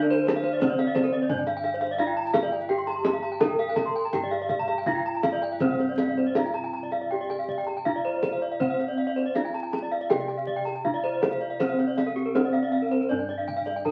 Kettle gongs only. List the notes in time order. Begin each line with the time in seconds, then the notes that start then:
Already playing: D3 D4
0.62 D4
1.30 G2
2.00 D4
2.71 G4
3.42 D4
4.14 G2
4.87 D4
5.61 C4
5.66 C2
6.36 D4
7.86 D4
8.61 C4
9.36 D4
10.11 C3
10.86 D4
11.61 C4
12.36 D4
13.11 G2
13.86 D4